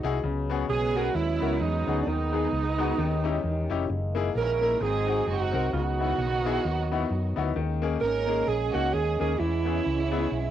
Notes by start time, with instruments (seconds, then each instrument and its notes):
Already playing: french horn section B2 F#3 G#3 D#4
0.03 fingered electric bass C2, grand piano D#4 E4 F#4 G#4
0.23 fingered electric bass C#2, grand piano C#3, french horn section F#3 B3 C#4
0.50 grand piano B3 C#4 F#4 G#4
0.69 fingered electric bass B1, string section B3 G#4, alto saxophone G#4
0.95 grand piano B3 C#4 F#4 A#4, alto saxophone F#4
1.14 fingered electric bass D#2, string section G#3 B3 E4, alto saxophone E4
1.40 fingered electric bass C#2, grand piano B3 C#4 F#4 A#4
1.60 fingered electric bass E2, string section F#3 B3 D#4, alto saxophone D#4
1.87 fingered electric bass D2, grand piano B3 C#4 F#4 G#4
2.02 alto saxophone D4, string section D#4
2.07 fingered electric bass D#2, grand piano D#3, french horn section D#3 D#4, string section G#3 B3, alto saxophone D#4
2.33 grand piano G#3 B3 D#4 G#4
2.53 fingered electric bass C#2
2.78 grand piano G#3 B3 D#4 F#4
2.98 fingered electric bass D#2, grand piano D#3, french horn section D#3 C#4 G4
3.24 grand piano C#4 D#4 E4 G4
3.44 fingered electric bass E2
3.70 fingered electric bass F1, grand piano C#4 D#4 E4 G4
3.89 fingered electric bass F#1, french horn section G#3 A#3 D#5
4.15 grand piano A#3 D#4 E4 G#4
4.35 fingered electric bass A#1, string section C#4 E4 A#4, alto saxophone A#4
4.61 grand piano A#3 D#4 E4 A#4
4.80 fingered electric bass G#1, grand piano G#2, french horn section F#3 G#3 C4, string section C4 D#4 G#4, alto saxophone G#4
5.07 grand piano C4 D#4 F#4 G#4
5.27 fingered electric bass F#1, string section C4 D#4 F#4, alto saxophone F#4
5.52 fingered electric bass C2, grand piano C4 D#4 F#4 A#4
5.73 fingered electric bass C#2, grand piano C#3, french horn section D#3 B3, string section B3 D#4 F#4, alto saxophone F#4
5.99 grand piano B3 D#4 E4 F#4
6.18 fingered electric bass B1
6.45 grand piano B3 D#4 E4 G#4
6.65 fingered electric bass D#2
6.92 grand piano B3 D#4 E4 F#4
7.11 fingered electric bass F#2
7.36 fingered electric bass D2, grand piano B3 D#4 E4 F#4
7.55 fingered electric bass D#2, grand piano D#3, french horn section G#3 A#3 C#4
7.82 grand piano A#3 C#4 D#4 G#4
8.01 fingered electric bass G#1, string section C#4 A#4, alto saxophone A#4
8.27 grand piano A#3 C#4 D#4 G#4
8.47 fingered electric bass A#1, string section C#4 G#4, alto saxophone G#4
8.72 fingered electric bass C#2, grand piano A#3 C#4 D#4 F#4, string section F#4, alto saxophone F#4
8.91 fingered electric bass D#2, string section G#4, alto saxophone G#4
9.18 fingered electric bass D#2, grand piano A#3 C#4 D#4 G#4, string section G#4, alto saxophone G#4
9.38 fingered electric bass E2, grand piano E3, string section G#3 C#4 E4, french horn section B3 E4, alto saxophone E4
9.65 grand piano B3 C#4 E4 G#4
9.86 fingered electric bass C#2
10.11 grand piano B3 C#4 E4 G#4
10.31 fingered electric bass B1